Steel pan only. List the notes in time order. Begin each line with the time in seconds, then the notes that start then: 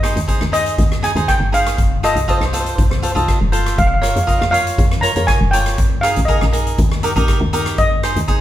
Already playing: D#5
0.53 D#5
1.04 G#5
1.28 G5
1.54 F5
2.04 D#5
2.30 C5
2.38 C5
2.45 C5
2.54 C5
2.60 C5
2.68 C5
2.76 C5
2.83 C5
2.91 C5
2.98 C5
3.05 C5
3.12 C5
3.78 F5
3.87 F5
3.94 F5
4.02 F5
4.09 F5
4.17 F5
4.23 F5
4.31 F5
4.39 F5
4.51 F5
5.01 A#5
5.27 G#5
5.51 G5
6.01 F5
6.25 D#5
7.78 D#5